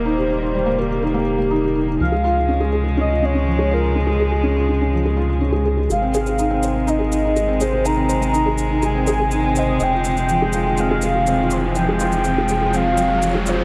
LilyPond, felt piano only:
\new Staff \with { instrumentName = "Felt piano" } { \time 4/4 \key aes \major \tempo 4 = 123 ees'16 g'16 ees'16 ees'16 g16 bes16 g'16 g'16 ees'16 bes16 bes'16 bes16 ees'16 g'16 ees'16 ees'16 | f16 aes16 f'16 f'16 des'16 aes16 aes'16 aes16 des'16 f'16 des'16 des'16 f16 aes16 f'16 f'16 | des'16 aes16 aes'16 aes16 des'16 f'16 des'16 des'16 f16 aes16 f'16 f'16 des'16 aes16 aes'16 aes16 | aes16 c'16 aes'16 aes'16 ees'16 c'16 c''16 c'16 ees'16 aes'16 ees'16 ees'16 aes16 c'16 aes'16 aes'16 |
ees'16 c'16 c''16 c'16 ees'16 aes'16 ees'16 ees'16 aes16 c'16 aes'16 aes'16 ees'16 c'16 c''16 c'16 | c'16 f'16 c'16 c'16 f16 aes16 f'16 f'16 c'16 aes16 aes'16 aes16 c'16 f'16 c'16 c'16 | f16 aes16 f'16 f'16 c'16 aes16 aes'16 aes16 c'16 f'16 c'16 c'16 f16 aes16 f'16 f'16 | }